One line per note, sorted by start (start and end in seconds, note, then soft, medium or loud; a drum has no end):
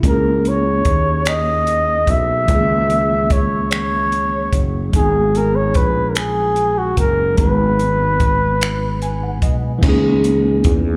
0.00 0.81 C#2 medium
0.00 2.44 A#3 medium
0.00 2.43 E4 medium
0.00 kick medium
0.00 closed hi-hat medium
0.05 2.45 C#4 soft
0.05 0.50 A#4 medium
0.10 2.48 G#4 medium
0.45 1.30 C#5 medium
0.45 closed hi-hat soft
0.85 2.04 D#2 medium
0.85 kick medium
0.85 closed hi-hat soft
1.25 2.12 D#5 loud
1.25 finger snap medium
1.25 closed hi-hat medium
1.67 closed hi-hat soft
2.07 2.45 B1 medium
2.07 3.34 E5 loud
2.07 kick medium
2.07 closed hi-hat soft
2.45 4.49 C#2 medium
2.45 4.88 E3 medium
2.45 4.89 A#3 medium
2.45 kick medium
2.45 closed hi-hat medium
2.50 4.91 D#3 medium
2.50 4.90 C#4 soft
2.55 4.92 G#4 medium
2.90 closed hi-hat soft
3.30 3.72 C#5 medium
3.30 kick medium
3.30 closed hi-hat soft
3.71 4.60 C#5 medium
3.71 finger snap medium
3.71 closed hi-hat medium
4.12 closed hi-hat soft
4.53 4.90 F#1 medium
4.53 kick medium
4.53 closed hi-hat medium
4.89 7.32 F#3 medium
4.89 7.34 G#3 medium
4.89 closed hi-hat medium
4.93 5.76 G#1 medium
4.93 7.35 B3 medium
4.93 7.36 D#4 soft
4.93 5.39 G#4 medium
4.93 kick medium
4.99 7.37 G#4 medium
5.35 5.57 A#4 medium
5.35 closed hi-hat soft
5.56 5.78 C#5 medium
5.74 6.94 A#1 medium
5.74 6.11 B4 medium
5.74 kick medium
5.74 closed hi-hat soft
6.10 6.18 A#4 medium
6.15 6.80 G#4 medium
6.15 finger snap medium
6.15 closed hi-hat medium
6.56 closed hi-hat soft
6.78 6.98 F#4 medium
6.97 7.35 F#1 medium
6.97 7.36 A#4 medium
6.97 kick medium
6.97 closed hi-hat medium
7.34 9.77 F#3 medium
7.34 9.78 G#3 soft
7.34 9.38 B4 medium
7.34 kick medium
7.34 closed hi-hat medium
7.39 9.43 G#1 medium
7.39 9.79 B3 medium
7.39 9.81 D#4 medium
7.44 9.82 B4 medium
7.79 closed hi-hat soft
8.20 kick medium
8.20 closed hi-hat soft
8.61 finger snap loud
8.61 closed hi-hat medium
9.02 9.21 G#5 medium
9.02 closed hi-hat soft
9.23 9.42 F#5 medium
9.42 9.79 B1 medium
9.42 9.80 D#5 medium
9.42 kick medium
9.42 closed hi-hat soft
9.79 10.97 E3 medium
9.79 10.97 A#3 medium
9.79 crash medium
9.83 10.61 C#2 loud
9.83 10.97 C#4 medium
9.83 10.97 D#4 medium
9.83 kick loud
9.89 10.97 G#4 medium
10.24 closed hi-hat soft
10.64 10.97 E2 medium
10.64 kick medium
10.64 closed hi-hat medium